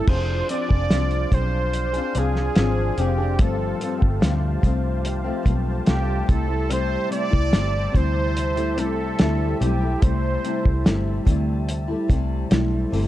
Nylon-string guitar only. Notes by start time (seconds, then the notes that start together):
0.07 F3 C4 D4 G#4
0.49 F3 C4 D4
0.53 G#4
0.69 D4 G#4
0.73 C4
0.90 F3 C4 D4 G#4
1.30 F3 C4 D4
1.35 G#4
1.93 D4 G#4
1.97 C4
2.14 F3 C4 D4
2.18 G#4
2.56 F3 C4 D4 G#4
2.97 F3 C4 D4 G#4
3.18 C4 D4 G#4
3.39 G2 F3 A3 C4
3.80 G2 F3 A3
3.84 C4
3.99 A3 C4
4.03 F3
4.20 G2 F3 A3 C4
4.62 G2 F3 A3
4.66 C4
5.24 F3 A3 C4
5.43 G2 F3 A3
5.47 C4
5.86 G2 F3 A3 C4
6.26 C3 G3 A3 E4
6.47 A3 E4
6.52 G3
6.69 C3 G3 A3 E4
7.09 C3 G3 A3 E4
7.30 G3 A3 E4
7.50 C3 G3 A3 E4
7.92 C3 G3 A3 E4
8.55 G3 A3 E4
8.76 C3 G3 A3 E4
9.19 C3 G3 A3 E4
9.60 C3 G3 A3 E4
9.81 A3 E4
9.85 G3
10.01 C3 G3 A3 E4
10.43 C3 G3 A3 E4
10.63 A3 E4
10.84 C3 G3 A3 E4
11.25 C3 G3 A3 E4
11.88 A3 E4
11.92 G3
12.08 C3 G3 A3
12.12 E4
12.50 G3 A3 E4
12.91 C3 G3 A3 E4